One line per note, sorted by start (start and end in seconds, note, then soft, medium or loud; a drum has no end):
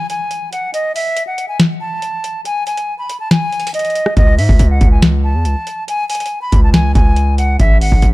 0.10 0.50 G#5 medium
0.10 closed hi-hat medium
0.31 closed hi-hat medium
0.52 0.71 F#5 medium
0.52 closed hi-hat medium
0.74 0.92 D#5 loud
0.74 closed hi-hat medium
0.95 1.25 E5 medium
0.95 open hi-hat medium
1.17 closed hi-hat medium
1.27 1.46 F#5 medium
1.38 closed hi-hat medium
1.48 1.58 G#5 medium
1.60 snare loud
1.60 closed hi-hat medium
1.80 2.41 A5 medium
2.02 closed hi-hat medium
2.24 closed hi-hat medium
2.45 2.64 G#5 loud
2.45 closed hi-hat medium
2.67 2.97 G#5 medium
2.67 closed hi-hat medium
2.77 closed hi-hat medium
2.99 3.17 B5 medium
3.10 closed hi-hat medium
3.20 3.29 A5 medium
3.31 3.72 G#5 loud
3.31 snare loud
3.31 closed hi-hat medium
3.52 closed hi-hat soft
3.60 closed hi-hat medium
3.67 closed hi-hat medium
3.74 4.14 D#5 medium
3.74 closed hi-hat medium
3.79 closed hi-hat medium
3.85 closed hi-hat soft
3.90 closed hi-hat soft
3.95 closed hi-hat medium
4.06 cross-stick loud
4.17 4.40 C#2 loud
4.17 4.35 D#5 loud
4.17 kick loud
4.17 closed hi-hat medium
4.38 4.48 G#2 loud
4.38 4.68 E5 medium
4.38 open hi-hat medium
4.49 4.59 C#2 loud
4.49 kick medium
4.59 4.80 C#2 loud
4.59 closed hi-hat medium
4.70 4.89 F#5 medium
4.81 5.36 C#2 loud
4.81 kick loud
4.81 closed hi-hat medium
4.91 5.01 G#5 medium
5.02 snare loud
5.02 closed hi-hat medium
5.24 5.84 A5 medium
5.35 5.47 E2 loud
5.45 5.55 C#2 loud
5.45 closed hi-hat medium
5.67 closed hi-hat medium
5.88 6.07 G#5 loud
5.88 closed hi-hat medium
6.09 6.39 G#5 medium
6.09 closed hi-hat medium
6.09 open hi-hat medium
6.15 closed hi-hat medium
6.20 closed hi-hat medium
6.26 closed hi-hat medium
6.42 6.60 B5 medium
6.52 6.94 C#2 loud
6.52 kick loud
6.52 closed hi-hat medium
6.63 6.73 A5 medium
6.73 6.92 G#5 medium
6.73 snare loud
6.73 closed hi-hat medium
6.95 7.57 C#2 loud
6.95 7.35 G#5 medium
6.95 kick medium
6.95 closed hi-hat medium
7.16 closed hi-hat medium
7.38 7.57 F#5 medium
7.38 closed hi-hat medium
7.60 7.82 A1 loud
7.60 7.78 E5 loud
7.60 kick loud
7.60 closed hi-hat medium
7.81 7.91 G#1 loud
7.81 8.12 F#5 medium
7.81 open hi-hat medium
7.92 8.02 A1 loud
7.92 kick medium
8.02 8.14 A1 loud
8.02 closed hi-hat medium